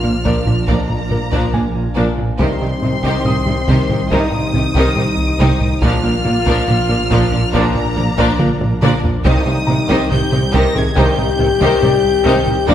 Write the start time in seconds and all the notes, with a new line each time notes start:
Already playing: A#1 F3 D4 F4 A#4 C5 C6 F6
0.03 A#2 F3 A#3 D4 F4 A#4 D5, taiko low-mid
0.24 A#1 A#2 F3 A#3 D4 A#4 D5, taiko
0.45 A#2 F3 D4 A#4 D5, taiko low-mid
0.67 A#1 F2 A#2 F3 A#3 D4 A#4 D5 A#5, taiko
0.89 A#2, taiko low-mid
1.09 A#1 A#2 F3 D4 A#4 D5, taiko low-mid
1.32 A#2 F3 A#3 D4 A#4 D5, taiko
1.53 A#1 A#2 F3 A#3 D4 F4 A#4 D5 G#5, taiko low-mid
1.75 A#2
1.95 A#1 A#2 F3 A#3 D4 A#4 D5
2.18 A#2, taiko low-mid
2.38 C2 G2 C3 D#3 G3 C4 D#4 G4 C5 C6, taiko
2.60 C3 D#3 G3 D#4 G4 C5
2.82 C2 C3 D#3 G3 D#4 G4 C5, taiko low-mid
3.04 C2 C3 D#3 D#4 G4 C5, taiko
3.25 C2 C3 D#3 D#4 G4 C5 D#6, taiko low-mid
3.46 C3 D#3 G3 D#4 G4 C5, taiko low-mid
3.68 C2 C3 D#3 D#4 G4 C5, taiko
3.89 C2 C3 D#3 D#4 G4 C5, taiko low-mid
4.10 C2 G2 C3 D#3 D#4 G4 C5 D#6, taiko
4.32 C2, taiko low-mid
4.53 C2 C3 D#3 C4 D#4 G4 C5, taiko low-mid
4.74 C2 C3 D#3 D#4 G4 C5, taiko
4.96 C2 C3 D#3 G3 D#4 G4 C5, taiko low-mid
5.17 C2
5.39 C2 C3 D#3 D#4 G4 C5
5.60 C2, taiko low-mid
5.81 A#1 A#2 F3 A#3 D4 F4 A#4 D5 F6, taiko
6.04 A#2 F3 A#3 D4 F4 A#4 D5
6.25 A#1 A#2 F3 A#3 D4 F4 A#4 D5, taiko low-mid
6.45 A#2 F3 A#3 D4 A#4 D5, taiko
6.67 A#1 A#2 F3 D4 A#4 D5, taiko low-mid
6.89 A#2 F3 A#3 D4 F4 A#4 D5, taiko low-mid
7.10 A#1 A#2 F3 A#3 D4 A#4 D5, taiko
7.32 A#2 F3 D4 A#4 D5, taiko low-mid
7.53 A#1 A#2 F3 A#3 D4 A#4 D5 A#5, taiko
7.75 A#2, taiko low-mid
7.96 A#1 A#2 F3 D4 A#4 D5, taiko low-mid
8.18 A#2 F3 A#3 D4 A#4 D5, taiko
8.39 A#1 A#2 F3 A#3 D4 F4 A#4 D5, taiko mid
8.61 A#2, taiko low-mid
8.82 A#1 A#2 F3 A#3 D4 A#4 D5, taiko mid
9.04 A#2, taiko low
9.24 C2 G2 C3 D#3 C4 D#4 G4 C5 D#6, taiko
9.46 C3 D#3 G3 D#4 G4 C5
9.67 C2 C3 D#3 G3 D#4 G4 C5 A#5, taiko low-mid
9.88 C2 C3 D#3 D#4 G4 C5, taiko
10.11 C2 C3 D#3 D#4 G4 C5 G6, taiko low-mid
10.31 C3 D#3 G3 D#4 G4 C5, taiko low-mid
10.52 C2 C3 D#3 D#4 G4 A#4 C5 A#6, taiko
10.74 C2 C3 D#3 D#4 G4 G#4 C5 G#6, taiko low-mid
10.96 C2 G2 C3 D#3 D#4 G4 C5 G5 G6, taiko
11.18 C2, taiko low-mid
11.39 C2 C3 D#3 C4 D#4 G4 C5, taiko low-mid
11.61 C2 C3 D#3 D#4 G4 C5, taiko
11.82 C2 C3 D#3 G3 D#4 G4 C5 D5, taiko low-mid
12.04 C2
12.25 C2 C3 D#3 D#4 G4 C5
12.47 C2, taiko low-mid
12.68 A#1 F2 A#2 F3 A#3 D4 F4 A#4 D5 A#6, taiko